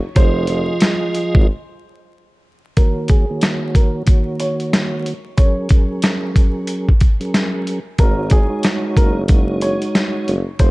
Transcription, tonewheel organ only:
0, 0, Header, 1, 2, 480
1, 0, Start_track
1, 0, Tempo, 652174
1, 119, Time_signature, 4, 2, 24, 8
1, 7881, End_track
2, 0, Start_track
2, 0, Title_t, "Tonewheel organ"
2, 0, Program_c, 0, 16
2, 110, Note_on_c, 0, 53, 100
2, 113, Note_on_c, 0, 65, 88
2, 116, Note_on_c, 0, 68, 90
2, 118, Note_on_c, 0, 75, 99
2, 340, Note_off_c, 0, 53, 0
2, 342, Note_off_c, 0, 65, 0
2, 343, Note_off_c, 0, 68, 0
2, 345, Note_off_c, 0, 75, 0
2, 361, Note_on_c, 0, 53, 94
2, 364, Note_on_c, 0, 65, 89
2, 366, Note_on_c, 0, 68, 87
2, 369, Note_on_c, 0, 75, 99
2, 1080, Note_off_c, 0, 53, 0
2, 1081, Note_off_c, 0, 65, 0
2, 1083, Note_off_c, 0, 68, 0
2, 1084, Note_off_c, 0, 75, 0
2, 2037, Note_on_c, 0, 51, 92
2, 2040, Note_on_c, 0, 58, 83
2, 2043, Note_on_c, 0, 66, 80
2, 2046, Note_on_c, 0, 73, 102
2, 2393, Note_off_c, 0, 51, 0
2, 2394, Note_off_c, 0, 58, 0
2, 2396, Note_off_c, 0, 66, 0
2, 2397, Note_off_c, 0, 73, 0
2, 2426, Note_on_c, 0, 51, 90
2, 2429, Note_on_c, 0, 58, 79
2, 2432, Note_on_c, 0, 66, 86
2, 2434, Note_on_c, 0, 73, 96
2, 2962, Note_off_c, 0, 51, 0
2, 2963, Note_off_c, 0, 58, 0
2, 2964, Note_off_c, 0, 66, 0
2, 2966, Note_off_c, 0, 73, 0
2, 2982, Note_on_c, 0, 51, 82
2, 2985, Note_on_c, 0, 58, 84
2, 2988, Note_on_c, 0, 66, 78
2, 2991, Note_on_c, 0, 73, 94
2, 3777, Note_off_c, 0, 51, 0
2, 3779, Note_off_c, 0, 58, 0
2, 3780, Note_off_c, 0, 66, 0
2, 3781, Note_off_c, 0, 73, 0
2, 3966, Note_on_c, 0, 54, 83
2, 3969, Note_on_c, 0, 61, 76
2, 3971, Note_on_c, 0, 68, 80
2, 3974, Note_on_c, 0, 70, 94
2, 4182, Note_off_c, 0, 54, 0
2, 4185, Note_off_c, 0, 61, 0
2, 4188, Note_off_c, 0, 68, 0
2, 4191, Note_off_c, 0, 70, 0
2, 4191, Note_on_c, 0, 54, 93
2, 4194, Note_on_c, 0, 61, 77
2, 4197, Note_on_c, 0, 68, 74
2, 4200, Note_on_c, 0, 70, 87
2, 5098, Note_off_c, 0, 54, 0
2, 5100, Note_off_c, 0, 61, 0
2, 5101, Note_off_c, 0, 68, 0
2, 5102, Note_off_c, 0, 70, 0
2, 5298, Note_on_c, 0, 54, 89
2, 5300, Note_on_c, 0, 61, 72
2, 5303, Note_on_c, 0, 68, 76
2, 5306, Note_on_c, 0, 70, 98
2, 5736, Note_off_c, 0, 54, 0
2, 5737, Note_off_c, 0, 61, 0
2, 5738, Note_off_c, 0, 68, 0
2, 5740, Note_off_c, 0, 70, 0
2, 5882, Note_on_c, 0, 56, 92
2, 5885, Note_on_c, 0, 63, 86
2, 5888, Note_on_c, 0, 66, 91
2, 5891, Note_on_c, 0, 73, 97
2, 6235, Note_off_c, 0, 56, 0
2, 6237, Note_off_c, 0, 63, 0
2, 6238, Note_off_c, 0, 66, 0
2, 6240, Note_off_c, 0, 73, 0
2, 6246, Note_on_c, 0, 56, 96
2, 6249, Note_on_c, 0, 63, 86
2, 6252, Note_on_c, 0, 66, 91
2, 6254, Note_on_c, 0, 73, 106
2, 6791, Note_off_c, 0, 56, 0
2, 6793, Note_off_c, 0, 63, 0
2, 6794, Note_off_c, 0, 66, 0
2, 6796, Note_off_c, 0, 73, 0
2, 6831, Note_on_c, 0, 56, 94
2, 6834, Note_on_c, 0, 63, 86
2, 6836, Note_on_c, 0, 66, 77
2, 6839, Note_on_c, 0, 73, 98
2, 7621, Note_off_c, 0, 56, 0
2, 7623, Note_off_c, 0, 63, 0
2, 7624, Note_off_c, 0, 66, 0
2, 7625, Note_off_c, 0, 73, 0
2, 7881, End_track
0, 0, End_of_file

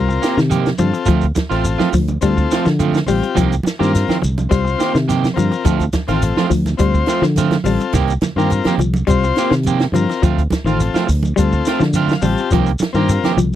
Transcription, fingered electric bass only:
0, 0, Header, 1, 3, 480
1, 0, Start_track
1, 0, Tempo, 571429
1, 911, Time_signature, 4, 2, 24, 8
1, 11384, End_track
2, 0, Start_track
2, 0, Title_t, "Fingered electric bass"
2, 0, Program_c, 0, 33
2, 0, Note_on_c, 0, 36, 88
2, 146, Note_off_c, 0, 36, 0
2, 313, Note_on_c, 0, 48, 96
2, 598, Note_off_c, 0, 48, 0
2, 663, Note_on_c, 0, 43, 87
2, 765, Note_off_c, 0, 43, 0
2, 910, Note_on_c, 0, 38, 86
2, 1102, Note_off_c, 0, 38, 0
2, 1270, Note_on_c, 0, 33, 83
2, 1464, Note_off_c, 0, 33, 0
2, 1624, Note_on_c, 0, 38, 81
2, 1818, Note_off_c, 0, 38, 0
2, 1869, Note_on_c, 0, 38, 86
2, 2062, Note_off_c, 0, 38, 0
2, 2239, Note_on_c, 0, 50, 95
2, 2522, Note_off_c, 0, 50, 0
2, 2596, Note_on_c, 0, 33, 86
2, 2693, Note_off_c, 0, 33, 0
2, 2834, Note_on_c, 0, 36, 90
2, 3025, Note_off_c, 0, 36, 0
2, 3197, Note_on_c, 0, 43, 84
2, 3388, Note_off_c, 0, 43, 0
2, 3563, Note_on_c, 0, 36, 84
2, 3750, Note_off_c, 0, 36, 0
2, 3791, Note_on_c, 0, 36, 90
2, 3983, Note_off_c, 0, 36, 0
2, 4155, Note_on_c, 0, 48, 92
2, 4439, Note_off_c, 0, 48, 0
2, 4517, Note_on_c, 0, 43, 88
2, 4614, Note_off_c, 0, 43, 0
2, 4752, Note_on_c, 0, 38, 81
2, 4944, Note_off_c, 0, 38, 0
2, 5111, Note_on_c, 0, 33, 85
2, 5305, Note_off_c, 0, 33, 0
2, 5462, Note_on_c, 0, 38, 79
2, 5658, Note_off_c, 0, 38, 0
2, 5705, Note_on_c, 0, 38, 83
2, 5899, Note_off_c, 0, 38, 0
2, 6064, Note_on_c, 0, 50, 96
2, 6353, Note_off_c, 0, 50, 0
2, 6422, Note_on_c, 0, 33, 89
2, 6525, Note_off_c, 0, 33, 0
2, 6670, Note_on_c, 0, 36, 88
2, 6862, Note_off_c, 0, 36, 0
2, 7022, Note_on_c, 0, 43, 79
2, 7219, Note_off_c, 0, 43, 0
2, 7373, Note_on_c, 0, 36, 75
2, 7573, Note_off_c, 0, 36, 0
2, 7631, Note_on_c, 0, 36, 81
2, 7824, Note_off_c, 0, 36, 0
2, 7990, Note_on_c, 0, 48, 92
2, 8277, Note_off_c, 0, 48, 0
2, 8333, Note_on_c, 0, 43, 86
2, 8440, Note_off_c, 0, 43, 0
2, 8593, Note_on_c, 0, 38, 89
2, 8785, Note_off_c, 0, 38, 0
2, 8941, Note_on_c, 0, 33, 81
2, 9139, Note_off_c, 0, 33, 0
2, 9315, Note_on_c, 0, 38, 80
2, 9506, Note_off_c, 0, 38, 0
2, 9558, Note_on_c, 0, 38, 87
2, 9748, Note_off_c, 0, 38, 0
2, 9914, Note_on_c, 0, 50, 96
2, 10200, Note_off_c, 0, 50, 0
2, 10267, Note_on_c, 0, 33, 85
2, 10370, Note_off_c, 0, 33, 0
2, 10525, Note_on_c, 0, 36, 83
2, 10713, Note_off_c, 0, 36, 0
2, 10872, Note_on_c, 0, 43, 80
2, 11067, Note_off_c, 0, 43, 0
2, 11229, Note_on_c, 0, 36, 76
2, 11384, Note_off_c, 0, 36, 0
2, 11384, End_track
3, 0, Start_track
3, 0, Title_t, "Muted fingered electric bass strokes"
3, 1152, Note_on_c, 9, 29, 36
3, 1236, Note_off_c, 9, 29, 0
3, 3067, Note_on_c, 9, 29, 39
3, 3151, Note_off_c, 9, 29, 0
3, 3439, Note_on_c, 9, 29, 34
3, 3523, Note_off_c, 9, 29, 0
3, 4992, Note_on_c, 9, 29, 35
3, 5076, Note_off_c, 9, 29, 0
3, 7267, Note_on_c, 9, 29, 32
3, 7351, Note_off_c, 9, 29, 0
3, 8837, Note_on_c, 9, 29, 35
3, 8921, Note_off_c, 9, 29, 0
3, 10756, Note_on_c, 9, 29, 37
3, 10840, Note_off_c, 9, 29, 0
3, 11122, Note_on_c, 9, 29, 31
3, 11206, Note_off_c, 9, 29, 0
3, 11384, End_track
0, 0, End_of_file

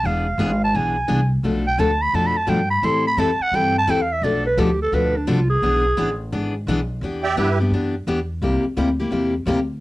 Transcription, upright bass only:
0, 0, Header, 1, 3, 480
1, 0, Start_track
1, 0, Tempo, 349243
1, 49, Time_signature, 4, 2, 24, 8
1, 13476, End_track
2, 0, Start_track
2, 0, Title_t, "Upright bass"
2, 0, Program_c, 0, 32
2, 45, Note_on_c, 0, 28, 79
2, 513, Note_off_c, 0, 28, 0
2, 519, Note_on_c, 0, 32, 90
2, 990, Note_off_c, 0, 32, 0
2, 1016, Note_on_c, 0, 35, 77
2, 1479, Note_off_c, 0, 35, 0
2, 1496, Note_on_c, 0, 36, 81
2, 1959, Note_off_c, 0, 36, 0
2, 1967, Note_on_c, 0, 35, 83
2, 2435, Note_off_c, 0, 35, 0
2, 2442, Note_on_c, 0, 38, 87
2, 2912, Note_off_c, 0, 38, 0
2, 2929, Note_on_c, 0, 41, 77
2, 3388, Note_off_c, 0, 41, 0
2, 3396, Note_on_c, 0, 43, 85
2, 3870, Note_off_c, 0, 43, 0
2, 3877, Note_on_c, 0, 45, 79
2, 4343, Note_off_c, 0, 45, 0
2, 4351, Note_on_c, 0, 41, 92
2, 4640, Note_off_c, 0, 41, 0
2, 4832, Note_on_c, 0, 43, 85
2, 5308, Note_off_c, 0, 43, 0
2, 5321, Note_on_c, 0, 40, 91
2, 5787, Note_off_c, 0, 40, 0
2, 5795, Note_on_c, 0, 35, 87
2, 6269, Note_off_c, 0, 35, 0
2, 6283, Note_on_c, 0, 38, 99
2, 6754, Note_off_c, 0, 38, 0
2, 6761, Note_on_c, 0, 38, 84
2, 7233, Note_off_c, 0, 38, 0
2, 7248, Note_on_c, 0, 36, 94
2, 7716, Note_off_c, 0, 36, 0
2, 7724, Note_on_c, 0, 35, 87
2, 8194, Note_off_c, 0, 35, 0
2, 8211, Note_on_c, 0, 33, 97
2, 8677, Note_off_c, 0, 33, 0
2, 8695, Note_on_c, 0, 32, 83
2, 9160, Note_off_c, 0, 32, 0
2, 9166, Note_on_c, 0, 35, 91
2, 9630, Note_off_c, 0, 35, 0
2, 9639, Note_on_c, 0, 40, 86
2, 10111, Note_off_c, 0, 40, 0
2, 10120, Note_on_c, 0, 43, 92
2, 10582, Note_off_c, 0, 43, 0
2, 10590, Note_on_c, 0, 42, 78
2, 11067, Note_off_c, 0, 42, 0
2, 11088, Note_on_c, 0, 40, 87
2, 11556, Note_off_c, 0, 40, 0
2, 11566, Note_on_c, 0, 36, 85
2, 11848, Note_off_c, 0, 36, 0
2, 12047, Note_on_c, 0, 38, 88
2, 12516, Note_off_c, 0, 38, 0
2, 12527, Note_on_c, 0, 40, 81
2, 12987, Note_off_c, 0, 40, 0
2, 12995, Note_on_c, 0, 38, 84
2, 13469, Note_off_c, 0, 38, 0
2, 13476, End_track
3, 0, Start_track
3, 0, Title_t, "Muted upright bass strokes"
3, 4665, Note_on_c, 9, 29, 38
3, 4802, Note_off_c, 9, 29, 0
3, 11865, Note_on_c, 9, 29, 39
3, 12002, Note_off_c, 9, 29, 0
3, 13476, End_track
0, 0, End_of_file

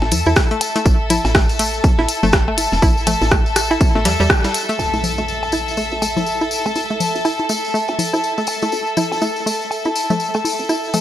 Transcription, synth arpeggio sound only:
0, 0, Header, 1, 2, 480
1, 0, Start_track
1, 0, Tempo, 491803
1, 835, Time_signature, 4, 2, 24, 8
1, 10743, End_track
2, 0, Start_track
2, 0, Title_t, "Synth arpeggio sound"
2, 0, Program_c, 0, 84
2, 259, Note_on_c, 0, 64, 75
2, 292, Note_off_c, 0, 64, 0
2, 499, Note_on_c, 0, 57, 78
2, 549, Note_off_c, 0, 57, 0
2, 738, Note_on_c, 0, 57, 77
2, 758, Note_off_c, 0, 57, 0
2, 1075, Note_on_c, 0, 64, 79
2, 1125, Note_off_c, 0, 64, 0
2, 1316, Note_on_c, 0, 57, 84
2, 1389, Note_off_c, 0, 57, 0
2, 1556, Note_on_c, 0, 57, 84
2, 1585, Note_off_c, 0, 57, 0
2, 1938, Note_on_c, 0, 64, 77
2, 1972, Note_off_c, 0, 64, 0
2, 2179, Note_on_c, 0, 57, 78
2, 2228, Note_off_c, 0, 57, 0
2, 2419, Note_on_c, 0, 57, 81
2, 2439, Note_off_c, 0, 57, 0
2, 2755, Note_on_c, 0, 64, 85
2, 2805, Note_off_c, 0, 64, 0
2, 2995, Note_on_c, 0, 57, 83
2, 3069, Note_off_c, 0, 57, 0
2, 3235, Note_on_c, 0, 57, 86
2, 3265, Note_off_c, 0, 57, 0
2, 3619, Note_on_c, 0, 64, 78
2, 3652, Note_off_c, 0, 64, 0
2, 3859, Note_on_c, 0, 57, 79
2, 3908, Note_off_c, 0, 57, 0
2, 3955, Note_on_c, 0, 55, 84
2, 4004, Note_off_c, 0, 55, 0
2, 4099, Note_on_c, 0, 55, 100
2, 4119, Note_off_c, 0, 55, 0
2, 4338, Note_on_c, 0, 55, 81
2, 4388, Note_off_c, 0, 55, 0
2, 4579, Note_on_c, 0, 57, 80
2, 4599, Note_off_c, 0, 57, 0
2, 4819, Note_on_c, 0, 57, 70
2, 4869, Note_off_c, 0, 57, 0
2, 5058, Note_on_c, 0, 57, 77
2, 5079, Note_off_c, 0, 57, 0
2, 5395, Note_on_c, 0, 64, 74
2, 5444, Note_off_c, 0, 64, 0
2, 5635, Note_on_c, 0, 57, 78
2, 5709, Note_off_c, 0, 57, 0
2, 5875, Note_on_c, 0, 57, 76
2, 5905, Note_off_c, 0, 57, 0
2, 6258, Note_on_c, 0, 64, 74
2, 6292, Note_off_c, 0, 64, 0
2, 6499, Note_on_c, 0, 57, 71
2, 6548, Note_off_c, 0, 57, 0
2, 6739, Note_on_c, 0, 57, 70
2, 6759, Note_off_c, 0, 57, 0
2, 7075, Note_on_c, 0, 64, 76
2, 7125, Note_off_c, 0, 64, 0
2, 7315, Note_on_c, 0, 57, 73
2, 7389, Note_off_c, 0, 57, 0
2, 7555, Note_on_c, 0, 57, 82
2, 7585, Note_off_c, 0, 57, 0
2, 7938, Note_on_c, 0, 64, 71
2, 7972, Note_off_c, 0, 64, 0
2, 8179, Note_on_c, 0, 57, 71
2, 8228, Note_off_c, 0, 57, 0
2, 8418, Note_on_c, 0, 57, 74
2, 8439, Note_off_c, 0, 57, 0
2, 8756, Note_on_c, 0, 64, 75
2, 8805, Note_off_c, 0, 64, 0
2, 8996, Note_on_c, 0, 57, 78
2, 9069, Note_off_c, 0, 57, 0
2, 9235, Note_on_c, 0, 57, 76
2, 9265, Note_off_c, 0, 57, 0
2, 9619, Note_on_c, 0, 64, 73
2, 9652, Note_off_c, 0, 64, 0
2, 9859, Note_on_c, 0, 57, 73
2, 9909, Note_off_c, 0, 57, 0
2, 10099, Note_on_c, 0, 57, 73
2, 10119, Note_off_c, 0, 57, 0
2, 10436, Note_on_c, 0, 64, 76
2, 10485, Note_off_c, 0, 64, 0
2, 10676, Note_on_c, 0, 57, 75
2, 10743, Note_off_c, 0, 57, 0
2, 10743, End_track
0, 0, End_of_file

